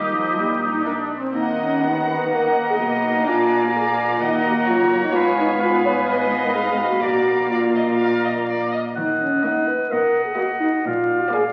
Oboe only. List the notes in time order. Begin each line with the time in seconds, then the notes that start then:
Already playing: G4
1.36 A#5
5.15 B5
5.61 B5
6.08 B5
6.55 B5
7.03 A#5
7.51 A#5
8.95 F#5
9.45 F#5
9.92 D#5
10.38 D#5
10.86 F5
11.34 F5